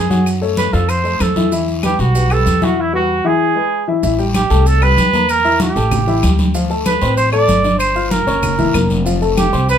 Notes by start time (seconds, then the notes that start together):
Already playing: F#2 G#4
0.10 F#3 F#4 F#5, high conga, short guiro, maracas
0.26 high conga, long guiro, claves, maracas
0.41 A3 A4 C#5, maracas
0.57 B4, high conga, short guiro, maracas
0.73 F2 F3 F4 A4 F5, high conga, short guiro, maracas
0.89 C5, high conga, long guiro, claves, maracas
1.04 A3 A4 C5, high conga, maracas
1.20 E2 A4, high conga, short guiro, claves, maracas
1.36 E3 E4 E5, high conga, short guiro, maracas
1.52 E3 E4 E5, high conga, long guiro, maracas
1.68 high conga, maracas
1.83 G3 G4 B4, high conga, short guiro, claves, maracas
1.99 B1 F#4, high conga, short guiro, maracas
2.15 G3 G4 B4, high conga, long guiro, maracas
2.30 G3 G4 A4 B4, high conga, claves, maracas
2.46 E2, high conga, short guiro, maracas
2.61 E3 E4 F#4 E5, high conga, short guiro, maracas
2.81 E4
2.93 G3 F#4 B4
3.25 E3 E4 G#4 E5
3.56 G#3 G#4 B4
3.88 E3 E4 E5
4.03 A1 E3 E4 E5, high conga, long guiro, maracas
4.19 G3 G4 G5, high conga, maracas
4.34 G4, high conga, short guiro, claves, maracas
4.50 C2 A3 A4 A5, short guiro, maracas
4.66 A4, high conga, long guiro, maracas
4.81 G3 G4 B4 G5, high conga, claves, maracas
4.97 E2, high conga, short guiro, maracas
5.13 A#3 A#4 A#5, high conga, short guiro, maracas
5.29 A#4, long guiro, claves, maracas
5.45 E4 E5 E6, high conga, maracas
5.60 G4, high conga, short guiro, maracas
5.76 A1 A3 A4 A5, high conga, short guiro, maracas
5.91 high conga, low conga, long guiro, claves, maracas
6.07 E3 E4 E5, high conga, maracas
6.23 D2 G3 G4 G5, high conga, short guiro, claves, maracas
6.39 high conga, short guiro, maracas
6.54 F3 F4 F5, high conga, long guiro, maracas
6.70 A3 A4 A5, high conga, maracas
6.86 B4, high conga, short guiro, claves, maracas
7.01 A1 C4 C5 C6, high conga, short guiro, maracas
7.17 C5, high conga, long guiro, maracas
7.32 A3 A4 D5 A5, high conga, claves, maracas
7.48 G1, high conga, short guiro, maracas
7.64 D4 D5 D6, high conga, short guiro, maracas
7.79 C5, high conga, long guiro, claves, maracas
7.96 F4 F5 F6, high conga, maracas
8.11 A#4, high conga, short guiro, maracas
8.27 F#1 C#4 C#5 C#6, high conga, short guiro, maracas
8.43 high conga, low conga, long guiro, claves, maracas
8.58 E3 E4 E5, high conga, low conga, maracas
8.74 F1 A#3 A#4 A#5, high conga, short guiro, claves, maracas
8.90 high conga, short guiro, maracas
9.05 F3 F4 F5, high conga, long guiro, maracas
9.21 A3 A4 A5, high conga, maracas
9.37 G4, high conga, short guiro, claves, maracas
9.52 C2 C4 C5 C6, high conga, short guiro, maracas
9.69 B4, high conga, long guiro, maracas